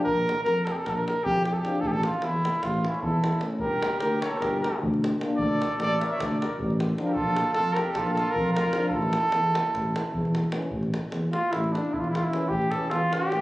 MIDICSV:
0, 0, Header, 1, 7, 480
1, 0, Start_track
1, 0, Tempo, 395517
1, 56, Time_signature, 9, 3, 24, 8
1, 16278, End_track
2, 0, Start_track
2, 0, Title_t, "Flugelhorn"
2, 0, Program_c, 0, 56
2, 48, Note_on_c, 0, 70, 116
2, 506, Note_off_c, 0, 70, 0
2, 531, Note_on_c, 0, 70, 120
2, 792, Note_on_c, 0, 69, 81
2, 810, Note_off_c, 0, 70, 0
2, 866, Note_on_c, 0, 67, 75
2, 884, Note_off_c, 0, 69, 0
2, 934, Note_on_c, 0, 69, 90
2, 952, Note_off_c, 0, 67, 0
2, 1035, Note_on_c, 0, 70, 96
2, 1053, Note_off_c, 0, 69, 0
2, 1083, Note_on_c, 0, 69, 86
2, 1102, Note_off_c, 0, 70, 0
2, 1165, Note_on_c, 0, 70, 93
2, 1183, Note_off_c, 0, 69, 0
2, 1298, Note_off_c, 0, 70, 0
2, 1305, Note_on_c, 0, 70, 99
2, 1505, Note_on_c, 0, 67, 118
2, 1523, Note_off_c, 0, 70, 0
2, 1746, Note_off_c, 0, 67, 0
2, 1754, Note_on_c, 0, 67, 102
2, 1858, Note_on_c, 0, 69, 81
2, 1877, Note_off_c, 0, 67, 0
2, 1929, Note_on_c, 0, 67, 92
2, 1948, Note_off_c, 0, 69, 0
2, 2190, Note_on_c, 0, 69, 106
2, 2208, Note_off_c, 0, 67, 0
2, 2274, Note_on_c, 0, 67, 91
2, 2292, Note_off_c, 0, 69, 0
2, 2327, Note_on_c, 0, 69, 110
2, 2345, Note_off_c, 0, 67, 0
2, 2466, Note_off_c, 0, 69, 0
2, 2485, Note_on_c, 0, 65, 87
2, 2714, Note_on_c, 0, 64, 113
2, 2732, Note_off_c, 0, 65, 0
2, 3192, Note_on_c, 0, 65, 93
2, 3211, Note_off_c, 0, 64, 0
2, 3472, Note_on_c, 0, 64, 79
2, 3490, Note_off_c, 0, 65, 0
2, 3655, Note_on_c, 0, 69, 89
2, 3674, Note_off_c, 0, 64, 0
2, 4132, Note_off_c, 0, 69, 0
2, 4359, Note_on_c, 0, 70, 106
2, 4816, Note_off_c, 0, 70, 0
2, 4851, Note_on_c, 0, 70, 99
2, 5098, Note_off_c, 0, 70, 0
2, 5117, Note_on_c, 0, 73, 89
2, 5312, Note_on_c, 0, 70, 99
2, 5330, Note_off_c, 0, 73, 0
2, 5580, Note_off_c, 0, 70, 0
2, 5588, Note_on_c, 0, 70, 76
2, 5806, Note_off_c, 0, 70, 0
2, 6514, Note_on_c, 0, 74, 108
2, 6971, Note_off_c, 0, 74, 0
2, 7059, Note_on_c, 0, 74, 126
2, 7283, Note_on_c, 0, 76, 82
2, 7301, Note_off_c, 0, 74, 0
2, 7306, Note_on_c, 0, 74, 72
2, 7325, Note_off_c, 0, 76, 0
2, 7412, Note_on_c, 0, 76, 98
2, 7431, Note_off_c, 0, 74, 0
2, 7517, Note_on_c, 0, 74, 99
2, 7536, Note_off_c, 0, 76, 0
2, 7767, Note_off_c, 0, 74, 0
2, 7774, Note_on_c, 0, 74, 78
2, 7979, Note_off_c, 0, 74, 0
2, 8562, Note_on_c, 0, 70, 71
2, 8645, Note_on_c, 0, 69, 120
2, 8663, Note_off_c, 0, 70, 0
2, 9146, Note_off_c, 0, 69, 0
2, 9153, Note_on_c, 0, 69, 124
2, 9385, Note_on_c, 0, 70, 98
2, 9403, Note_off_c, 0, 69, 0
2, 9588, Note_on_c, 0, 69, 98
2, 9606, Note_off_c, 0, 70, 0
2, 9866, Note_off_c, 0, 69, 0
2, 9874, Note_on_c, 0, 69, 104
2, 10082, Note_on_c, 0, 70, 114
2, 10100, Note_off_c, 0, 69, 0
2, 10343, Note_off_c, 0, 70, 0
2, 10351, Note_on_c, 0, 70, 102
2, 10774, Note_off_c, 0, 70, 0
2, 10781, Note_on_c, 0, 69, 112
2, 12704, Note_off_c, 0, 69, 0
2, 16278, End_track
3, 0, Start_track
3, 0, Title_t, "Trumpet"
3, 0, Program_c, 1, 56
3, 3459, Note_on_c, 1, 61, 69
3, 3700, Note_on_c, 1, 64, 84
3, 3719, Note_off_c, 1, 61, 0
3, 4154, Note_off_c, 1, 64, 0
3, 4383, Note_on_c, 1, 67, 75
3, 4829, Note_off_c, 1, 67, 0
3, 4868, Note_on_c, 1, 67, 79
3, 5107, Note_off_c, 1, 67, 0
3, 5161, Note_on_c, 1, 69, 76
3, 5357, Note_on_c, 1, 67, 85
3, 5375, Note_off_c, 1, 69, 0
3, 5614, Note_off_c, 1, 67, 0
3, 5644, Note_on_c, 1, 67, 66
3, 5836, Note_off_c, 1, 67, 0
3, 6571, Note_on_c, 1, 69, 83
3, 7002, Note_off_c, 1, 69, 0
3, 7051, Note_on_c, 1, 69, 97
3, 7301, Note_on_c, 1, 73, 83
3, 7320, Note_off_c, 1, 69, 0
3, 7327, Note_on_c, 1, 70, 76
3, 7345, Note_off_c, 1, 73, 0
3, 7425, Note_on_c, 1, 73, 74
3, 7443, Note_off_c, 1, 70, 0
3, 7535, Note_on_c, 1, 69, 82
3, 7554, Note_off_c, 1, 73, 0
3, 7771, Note_off_c, 1, 69, 0
3, 7779, Note_on_c, 1, 70, 73
3, 7981, Note_off_c, 1, 70, 0
3, 8592, Note_on_c, 1, 67, 71
3, 8674, Note_on_c, 1, 65, 86
3, 8693, Note_off_c, 1, 67, 0
3, 9166, Note_off_c, 1, 65, 0
3, 9172, Note_on_c, 1, 65, 84
3, 9422, Note_on_c, 1, 67, 92
3, 9440, Note_off_c, 1, 65, 0
3, 9667, Note_on_c, 1, 65, 89
3, 9685, Note_off_c, 1, 67, 0
3, 9921, Note_off_c, 1, 65, 0
3, 9929, Note_on_c, 1, 65, 91
3, 10145, Note_off_c, 1, 65, 0
3, 10145, Note_on_c, 1, 65, 93
3, 10394, Note_off_c, 1, 65, 0
3, 10400, Note_on_c, 1, 65, 99
3, 10807, Note_off_c, 1, 65, 0
3, 10848, Note_on_c, 1, 64, 70
3, 12737, Note_off_c, 1, 64, 0
3, 13745, Note_on_c, 1, 65, 85
3, 13974, Note_on_c, 1, 64, 74
3, 13992, Note_off_c, 1, 65, 0
3, 14227, Note_on_c, 1, 62, 72
3, 14246, Note_off_c, 1, 64, 0
3, 14483, Note_on_c, 1, 64, 64
3, 14501, Note_off_c, 1, 62, 0
3, 14558, Note_on_c, 1, 65, 60
3, 14576, Note_off_c, 1, 64, 0
3, 14671, Note_on_c, 1, 64, 66
3, 14690, Note_off_c, 1, 65, 0
3, 14761, Note_on_c, 1, 65, 72
3, 14780, Note_off_c, 1, 64, 0
3, 14842, Note_on_c, 1, 64, 74
3, 14860, Note_off_c, 1, 65, 0
3, 15151, Note_on_c, 1, 67, 85
3, 15169, Note_off_c, 1, 64, 0
3, 15424, Note_on_c, 1, 69, 87
3, 15442, Note_off_c, 1, 67, 0
3, 15660, Note_on_c, 1, 65, 94
3, 15678, Note_off_c, 1, 69, 0
3, 15948, Note_on_c, 1, 67, 100
3, 15967, Note_off_c, 1, 65, 0
3, 16278, Note_off_c, 1, 67, 0
3, 16278, End_track
4, 0, Start_track
4, 0, Title_t, "Euphonium"
4, 0, Program_c, 2, 58
4, 1998, Note_on_c, 2, 62, 69
4, 2190, Note_off_c, 2, 62, 0
4, 4144, Note_on_c, 2, 61, 47
4, 4338, Note_off_c, 2, 61, 0
4, 6325, Note_on_c, 2, 62, 63
4, 6513, Note_off_c, 2, 62, 0
4, 8457, Note_on_c, 2, 62, 70
4, 8650, Note_off_c, 2, 62, 0
4, 10599, Note_on_c, 2, 62, 55
4, 10797, Note_off_c, 2, 62, 0
4, 12783, Note_on_c, 2, 61, 53
4, 12977, Note_off_c, 2, 61, 0
4, 14929, Note_on_c, 2, 61, 58
4, 15128, Note_off_c, 2, 61, 0
4, 15409, Note_on_c, 2, 61, 58
4, 15612, Note_off_c, 2, 61, 0
4, 15930, Note_on_c, 2, 61, 68
4, 16127, Note_off_c, 2, 61, 0
4, 16278, End_track
5, 0, Start_track
5, 0, Title_t, "Euphonium"
5, 0, Program_c, 3, 58
5, 1982, Note_on_c, 3, 53, 70
5, 2177, Note_off_c, 3, 53, 0
5, 4153, Note_on_c, 3, 57, 53
5, 4344, Note_off_c, 3, 57, 0
5, 6292, Note_on_c, 3, 58, 61
5, 6487, Note_off_c, 3, 58, 0
5, 8460, Note_on_c, 3, 53, 68
5, 8653, Note_off_c, 3, 53, 0
5, 10620, Note_on_c, 3, 53, 69
5, 10813, Note_off_c, 3, 53, 0
5, 12774, Note_on_c, 3, 52, 60
5, 12970, Note_off_c, 3, 52, 0
5, 14944, Note_on_c, 3, 52, 62
5, 15140, Note_off_c, 3, 52, 0
5, 15431, Note_on_c, 3, 52, 60
5, 15630, Note_off_c, 3, 52, 0
5, 15918, Note_on_c, 3, 52, 58
5, 16118, Note_off_c, 3, 52, 0
5, 16278, End_track
6, 0, Start_track
6, 0, Title_t, "Tuba"
6, 0, Program_c, 4, 58
6, 66, Note_on_c, 4, 34, 92
6, 332, Note_off_c, 4, 34, 0
6, 553, Note_on_c, 4, 41, 106
6, 820, Note_off_c, 4, 41, 0
6, 1026, Note_on_c, 4, 34, 95
6, 1297, Note_off_c, 4, 34, 0
6, 1525, Note_on_c, 4, 41, 117
6, 1901, Note_off_c, 4, 41, 0
6, 2197, Note_on_c, 4, 33, 99
6, 2469, Note_off_c, 4, 33, 0
6, 2708, Note_on_c, 4, 40, 89
6, 2974, Note_off_c, 4, 40, 0
6, 3181, Note_on_c, 4, 33, 88
6, 3452, Note_off_c, 4, 33, 0
6, 3663, Note_on_c, 4, 40, 105
6, 4043, Note_off_c, 4, 40, 0
6, 4351, Note_on_c, 4, 31, 72
6, 4623, Note_off_c, 4, 31, 0
6, 4836, Note_on_c, 4, 38, 77
6, 5110, Note_off_c, 4, 38, 0
6, 5332, Note_on_c, 4, 31, 95
6, 5605, Note_off_c, 4, 31, 0
6, 5835, Note_on_c, 4, 38, 103
6, 6211, Note_off_c, 4, 38, 0
6, 6529, Note_on_c, 4, 38, 99
6, 6796, Note_off_c, 4, 38, 0
6, 7013, Note_on_c, 4, 33, 89
6, 7281, Note_off_c, 4, 33, 0
6, 7497, Note_on_c, 4, 38, 84
6, 7767, Note_off_c, 4, 38, 0
6, 7996, Note_on_c, 4, 33, 112
6, 8372, Note_off_c, 4, 33, 0
6, 8692, Note_on_c, 4, 34, 92
6, 8957, Note_off_c, 4, 34, 0
6, 9199, Note_on_c, 4, 41, 87
6, 9460, Note_off_c, 4, 41, 0
6, 9676, Note_on_c, 4, 34, 93
6, 9941, Note_off_c, 4, 34, 0
6, 10153, Note_on_c, 4, 41, 104
6, 10529, Note_off_c, 4, 41, 0
6, 10840, Note_on_c, 4, 33, 88
6, 11109, Note_off_c, 4, 33, 0
6, 11314, Note_on_c, 4, 40, 90
6, 11588, Note_off_c, 4, 40, 0
6, 11803, Note_on_c, 4, 33, 83
6, 12078, Note_off_c, 4, 33, 0
6, 12291, Note_on_c, 4, 40, 96
6, 12675, Note_off_c, 4, 40, 0
6, 12999, Note_on_c, 4, 33, 90
6, 13270, Note_off_c, 4, 33, 0
6, 13502, Note_on_c, 4, 40, 89
6, 13646, Note_off_c, 4, 40, 0
6, 13991, Note_on_c, 4, 33, 82
6, 14261, Note_off_c, 4, 33, 0
6, 14483, Note_on_c, 4, 40, 83
6, 14862, Note_off_c, 4, 40, 0
6, 15158, Note_on_c, 4, 33, 90
6, 15433, Note_off_c, 4, 33, 0
6, 15655, Note_on_c, 4, 40, 97
6, 15804, Note_off_c, 4, 40, 0
6, 16153, Note_on_c, 4, 33, 80
6, 16278, Note_off_c, 4, 33, 0
6, 16278, End_track
7, 0, Start_track
7, 0, Title_t, "Davul"
7, 76, Note_on_c, 9, 43, 81
7, 198, Note_off_c, 9, 43, 0
7, 353, Note_on_c, 9, 37, 67
7, 449, Note_off_c, 9, 37, 0
7, 449, Note_on_c, 9, 37, 23
7, 563, Note_off_c, 9, 37, 0
7, 563, Note_on_c, 9, 37, 57
7, 684, Note_off_c, 9, 37, 0
7, 812, Note_on_c, 9, 37, 73
7, 933, Note_off_c, 9, 37, 0
7, 1047, Note_on_c, 9, 37, 68
7, 1047, Note_on_c, 9, 43, 62
7, 1168, Note_off_c, 9, 37, 0
7, 1168, Note_off_c, 9, 43, 0
7, 1182, Note_on_c, 9, 37, 23
7, 1304, Note_off_c, 9, 37, 0
7, 1308, Note_on_c, 9, 37, 73
7, 1429, Note_off_c, 9, 37, 0
7, 1527, Note_on_c, 9, 43, 98
7, 1648, Note_off_c, 9, 43, 0
7, 1765, Note_on_c, 9, 37, 70
7, 1887, Note_off_c, 9, 37, 0
7, 1892, Note_on_c, 9, 37, 28
7, 1999, Note_off_c, 9, 37, 0
7, 1999, Note_on_c, 9, 37, 66
7, 2121, Note_off_c, 9, 37, 0
7, 2128, Note_on_c, 9, 37, 24
7, 2217, Note_on_c, 9, 43, 95
7, 2250, Note_off_c, 9, 37, 0
7, 2339, Note_off_c, 9, 43, 0
7, 2348, Note_on_c, 9, 37, 26
7, 2468, Note_off_c, 9, 37, 0
7, 2468, Note_on_c, 9, 37, 73
7, 2590, Note_off_c, 9, 37, 0
7, 2594, Note_on_c, 9, 37, 27
7, 2694, Note_off_c, 9, 37, 0
7, 2694, Note_on_c, 9, 37, 67
7, 2816, Note_off_c, 9, 37, 0
7, 2973, Note_on_c, 9, 37, 75
7, 3095, Note_off_c, 9, 37, 0
7, 3097, Note_on_c, 9, 37, 29
7, 3191, Note_off_c, 9, 37, 0
7, 3191, Note_on_c, 9, 37, 66
7, 3191, Note_on_c, 9, 43, 65
7, 3312, Note_off_c, 9, 37, 0
7, 3312, Note_off_c, 9, 43, 0
7, 3323, Note_on_c, 9, 37, 25
7, 3445, Note_off_c, 9, 37, 0
7, 3453, Note_on_c, 9, 37, 60
7, 3572, Note_off_c, 9, 37, 0
7, 3572, Note_on_c, 9, 37, 27
7, 3678, Note_on_c, 9, 43, 88
7, 3693, Note_off_c, 9, 37, 0
7, 3799, Note_off_c, 9, 43, 0
7, 3929, Note_on_c, 9, 37, 72
7, 4035, Note_off_c, 9, 37, 0
7, 4035, Note_on_c, 9, 37, 29
7, 4138, Note_off_c, 9, 37, 0
7, 4138, Note_on_c, 9, 37, 60
7, 4256, Note_off_c, 9, 37, 0
7, 4256, Note_on_c, 9, 37, 20
7, 4361, Note_on_c, 9, 43, 92
7, 4377, Note_off_c, 9, 37, 0
7, 4483, Note_off_c, 9, 43, 0
7, 4642, Note_on_c, 9, 37, 81
7, 4763, Note_off_c, 9, 37, 0
7, 4767, Note_on_c, 9, 37, 26
7, 4860, Note_off_c, 9, 37, 0
7, 4860, Note_on_c, 9, 37, 72
7, 4981, Note_off_c, 9, 37, 0
7, 5124, Note_on_c, 9, 37, 85
7, 5245, Note_off_c, 9, 37, 0
7, 5366, Note_on_c, 9, 37, 72
7, 5366, Note_on_c, 9, 43, 62
7, 5487, Note_off_c, 9, 37, 0
7, 5487, Note_off_c, 9, 43, 0
7, 5635, Note_on_c, 9, 37, 68
7, 5756, Note_off_c, 9, 37, 0
7, 5866, Note_on_c, 9, 43, 93
7, 5988, Note_off_c, 9, 43, 0
7, 5991, Note_on_c, 9, 37, 27
7, 6112, Note_off_c, 9, 37, 0
7, 6118, Note_on_c, 9, 37, 76
7, 6236, Note_off_c, 9, 37, 0
7, 6236, Note_on_c, 9, 37, 27
7, 6327, Note_off_c, 9, 37, 0
7, 6327, Note_on_c, 9, 37, 68
7, 6438, Note_off_c, 9, 37, 0
7, 6438, Note_on_c, 9, 37, 25
7, 6542, Note_on_c, 9, 43, 93
7, 6559, Note_off_c, 9, 37, 0
7, 6663, Note_off_c, 9, 43, 0
7, 6817, Note_on_c, 9, 37, 78
7, 6938, Note_off_c, 9, 37, 0
7, 6938, Note_on_c, 9, 37, 28
7, 7036, Note_off_c, 9, 37, 0
7, 7036, Note_on_c, 9, 37, 70
7, 7158, Note_off_c, 9, 37, 0
7, 7299, Note_on_c, 9, 37, 75
7, 7420, Note_off_c, 9, 37, 0
7, 7530, Note_on_c, 9, 37, 81
7, 7530, Note_on_c, 9, 43, 77
7, 7651, Note_off_c, 9, 37, 0
7, 7651, Note_off_c, 9, 43, 0
7, 7665, Note_on_c, 9, 37, 22
7, 7786, Note_off_c, 9, 37, 0
7, 7793, Note_on_c, 9, 37, 67
7, 7915, Note_off_c, 9, 37, 0
7, 8005, Note_on_c, 9, 43, 97
7, 8127, Note_off_c, 9, 43, 0
7, 8136, Note_on_c, 9, 37, 24
7, 8255, Note_off_c, 9, 37, 0
7, 8255, Note_on_c, 9, 37, 77
7, 8361, Note_off_c, 9, 37, 0
7, 8361, Note_on_c, 9, 37, 25
7, 8475, Note_off_c, 9, 37, 0
7, 8475, Note_on_c, 9, 37, 58
7, 8597, Note_off_c, 9, 37, 0
7, 8690, Note_on_c, 9, 43, 91
7, 8812, Note_off_c, 9, 43, 0
7, 8938, Note_on_c, 9, 37, 78
7, 9059, Note_off_c, 9, 37, 0
7, 9068, Note_on_c, 9, 37, 26
7, 9157, Note_off_c, 9, 37, 0
7, 9157, Note_on_c, 9, 37, 65
7, 9278, Note_off_c, 9, 37, 0
7, 9423, Note_on_c, 9, 37, 76
7, 9544, Note_off_c, 9, 37, 0
7, 9649, Note_on_c, 9, 37, 77
7, 9649, Note_on_c, 9, 43, 66
7, 9770, Note_off_c, 9, 37, 0
7, 9770, Note_off_c, 9, 43, 0
7, 9793, Note_on_c, 9, 37, 27
7, 9914, Note_off_c, 9, 37, 0
7, 9920, Note_on_c, 9, 37, 61
7, 10041, Note_off_c, 9, 37, 0
7, 10143, Note_on_c, 9, 43, 91
7, 10265, Note_off_c, 9, 43, 0
7, 10272, Note_on_c, 9, 37, 23
7, 10394, Note_off_c, 9, 37, 0
7, 10395, Note_on_c, 9, 37, 78
7, 10501, Note_off_c, 9, 37, 0
7, 10501, Note_on_c, 9, 37, 26
7, 10594, Note_off_c, 9, 37, 0
7, 10594, Note_on_c, 9, 37, 75
7, 10716, Note_off_c, 9, 37, 0
7, 10716, Note_on_c, 9, 37, 22
7, 10808, Note_on_c, 9, 43, 90
7, 10838, Note_off_c, 9, 37, 0
7, 10929, Note_off_c, 9, 43, 0
7, 10951, Note_on_c, 9, 37, 26
7, 11072, Note_off_c, 9, 37, 0
7, 11079, Note_on_c, 9, 37, 76
7, 11200, Note_off_c, 9, 37, 0
7, 11200, Note_on_c, 9, 37, 25
7, 11313, Note_off_c, 9, 37, 0
7, 11313, Note_on_c, 9, 37, 81
7, 11434, Note_off_c, 9, 37, 0
7, 11461, Note_on_c, 9, 37, 25
7, 11582, Note_off_c, 9, 37, 0
7, 11593, Note_on_c, 9, 37, 85
7, 11715, Note_off_c, 9, 37, 0
7, 11726, Note_on_c, 9, 37, 31
7, 11831, Note_off_c, 9, 37, 0
7, 11831, Note_on_c, 9, 37, 60
7, 11831, Note_on_c, 9, 43, 67
7, 11952, Note_off_c, 9, 37, 0
7, 11952, Note_off_c, 9, 43, 0
7, 11957, Note_on_c, 9, 37, 23
7, 12078, Note_off_c, 9, 37, 0
7, 12085, Note_on_c, 9, 37, 81
7, 12206, Note_off_c, 9, 37, 0
7, 12207, Note_on_c, 9, 37, 25
7, 12314, Note_on_c, 9, 43, 92
7, 12328, Note_off_c, 9, 37, 0
7, 12435, Note_off_c, 9, 43, 0
7, 12441, Note_on_c, 9, 37, 25
7, 12558, Note_off_c, 9, 37, 0
7, 12558, Note_on_c, 9, 37, 64
7, 12666, Note_off_c, 9, 37, 0
7, 12666, Note_on_c, 9, 37, 26
7, 12768, Note_off_c, 9, 37, 0
7, 12768, Note_on_c, 9, 37, 80
7, 12890, Note_off_c, 9, 37, 0
7, 12892, Note_on_c, 9, 37, 26
7, 12996, Note_on_c, 9, 43, 90
7, 13014, Note_off_c, 9, 37, 0
7, 13117, Note_off_c, 9, 43, 0
7, 13141, Note_on_c, 9, 37, 25
7, 13262, Note_off_c, 9, 37, 0
7, 13273, Note_on_c, 9, 37, 66
7, 13394, Note_off_c, 9, 37, 0
7, 13497, Note_on_c, 9, 37, 66
7, 13619, Note_off_c, 9, 37, 0
7, 13753, Note_on_c, 9, 37, 67
7, 13875, Note_off_c, 9, 37, 0
7, 13989, Note_on_c, 9, 37, 64
7, 14111, Note_off_c, 9, 37, 0
7, 14125, Note_on_c, 9, 37, 26
7, 14247, Note_off_c, 9, 37, 0
7, 14262, Note_on_c, 9, 37, 61
7, 14378, Note_off_c, 9, 37, 0
7, 14378, Note_on_c, 9, 37, 23
7, 14486, Note_on_c, 9, 43, 90
7, 14500, Note_off_c, 9, 37, 0
7, 14607, Note_off_c, 9, 43, 0
7, 14613, Note_on_c, 9, 37, 23
7, 14734, Note_off_c, 9, 37, 0
7, 14746, Note_on_c, 9, 37, 63
7, 14867, Note_off_c, 9, 37, 0
7, 14969, Note_on_c, 9, 37, 60
7, 15083, Note_off_c, 9, 37, 0
7, 15083, Note_on_c, 9, 37, 21
7, 15176, Note_on_c, 9, 43, 91
7, 15204, Note_off_c, 9, 37, 0
7, 15297, Note_off_c, 9, 43, 0
7, 15313, Note_on_c, 9, 37, 27
7, 15432, Note_off_c, 9, 37, 0
7, 15432, Note_on_c, 9, 37, 68
7, 15553, Note_off_c, 9, 37, 0
7, 15672, Note_on_c, 9, 37, 67
7, 15793, Note_off_c, 9, 37, 0
7, 15931, Note_on_c, 9, 37, 79
7, 16052, Note_off_c, 9, 37, 0
7, 16165, Note_on_c, 9, 37, 60
7, 16278, Note_off_c, 9, 37, 0
7, 16278, End_track
0, 0, End_of_file